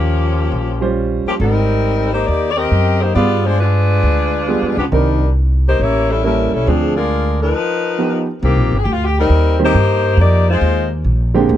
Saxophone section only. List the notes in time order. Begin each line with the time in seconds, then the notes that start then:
Already playing: F3 A#3 C#4 G4
1.27 F3 A#3 C#4 G4
1.40 G3 C4 D#4 A#4
2.13 A#3 D#4 G4 C5
2.27 A#3 D#4 G4 D5
2.51 D5
2.57 C4 G4 A#4 D#5
3.01 A#3 D#4 G4 C5
3.15 B3 F4 G#4 D5
3.46 G#3 D4 F4 C5
3.60 G#3 D4 F4 B4
4.77 F3 B3 D4 G4
4.92 G3 D4 D#4 A#4
5.67 A#3 D#4 G4 C5
5.81 A#3 E4 G4 C#5
6.11 G3 C#4 E4 A4
6.24 G3 C#4 E4 A#4
6.53 G3 C#4 E4 A4
6.67 F3 C4 D4 G#4
6.96 G#3 D4 F4 A#4
7.41 F3 D#4 A#4 B4
8.43 D#3 A#3 C4 G4
8.78 G#4
8.83 G4
8.93 F4
9.05 G4
9.19 G3 C4 D#4 A#4
9.64 A#3 D#4 G4 C5
10.20 A#3 D#4 G4 D5
10.50 G#3 D#4 F4 C5